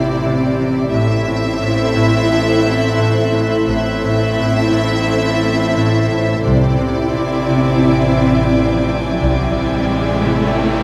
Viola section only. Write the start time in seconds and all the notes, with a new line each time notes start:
Already playing: C4 E4
0.93 C4 E4
3.69 C4 E4
6.46 C4 E4
9.22 C4 E4